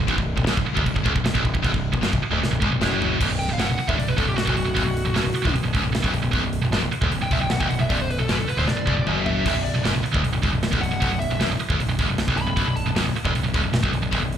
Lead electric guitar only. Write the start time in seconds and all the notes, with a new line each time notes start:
3.39 G5
3.53 F5
3.59 F#5
3.88 E5
3.99 D5
4.08 B4
4.18 A4
4.28 G4
4.37 F#4
7.23 G5
7.32 E5
7.41 G5
7.51 F#5
7.60 G5
7.69 F#5
7.80 E5
7.91 D5
8.01 C5
8.11 B4
8.19 A4
8.32 B4
8.39 A4
8.49 B4
8.59 C5
8.68 D5
9.26 E5
9.64 D5
10.81 F#5
11.20 E5
12.37 B5
12.76 A5